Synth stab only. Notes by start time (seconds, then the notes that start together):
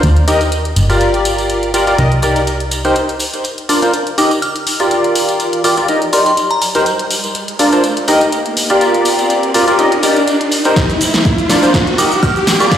0.28 D#4 G4 A#4 D#5
0.90 F4 G4 A#4 D5
1.74 F4 G4 A#4 D5
1.87 F4 G4 A#4 D5
1.98 D#4 G4 A#4 D#5
2.23 D#4 G4 A#4 D5
2.85 D#4 G4 A#4 C5
3.69 D4 F4 A#4 D5
3.82 D4 F4 A#4 C5
4.18 D#4 G4 A#4 D#5
4.80 F4 G4 A#4 D5
5.64 F4 G4 A#4 D5
5.77 F4 G4 A#4 D5
5.89 D#4 G4 A#4 D#5
6.13 D#4 G4 A#4 D5
6.75 D#4 G4 A#4 C5
7.59 D4 F4 A#4 D5
7.72 D4 F4 A#4 C5
8.08 D#4 G4 A#4 D#5
8.70 F4 G4 A#4 D5
9.54 F4 G4 A#4 D5
9.68 F4 G4 A#4 D5
9.79 D#4 G4 A#4 D#5
10.03 D#4 G4 A#4 D5
10.65 D#4 G4 A#4 C5
11.49 D4 F4 A#4 D5
11.63 D4 F4 A#4 C5
11.98 D#4 G4 A#4 D#5
12.60 F4 G4 A#4 D5